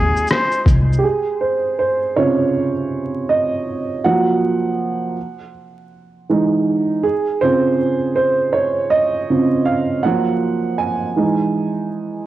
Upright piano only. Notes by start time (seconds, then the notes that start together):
Already playing: G#3 C4 D#4 F4
0.99 G4
1.04 G#4
1.41 C5
1.79 C5
2.16 C3 C#3 F4 C#5
3.29 D#5
4.04 F3 F#3 A#3 F#5
6.30 E3 G#3 D#4
7.04 G#4
7.41 C#3 C4 F4 C5
8.16 C5
8.53 C#5
8.90 D#5
9.29 C#3 C4 F4
9.65 F5
10.03 F3 F#3 A#3 F#5
10.78 G#5
11.16 E3 G#3 D#4